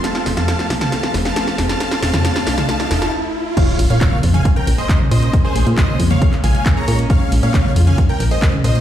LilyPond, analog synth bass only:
\new Staff \with { instrumentName = "Analog synth bass" } { \clef bass \time 4/4 \key f \minor \tempo 4 = 136 r8 f,,16 f,8 r16 c,8 r8 f,,8 r8 f,,8 | r8 f,,16 f,8 r16 c,8 r8 f,,8 r4 | r8 bes,,16 bes,8 r16 f,8 r8 bes,,8 r8 bes,8 | r8 bes,,16 bes,8 r16 f,8 r8 bes,,8 r8 bes,8 |
r8 bes,,16 bes,8 r16 f,8 r8 bes,,8 r8 bes,8 | }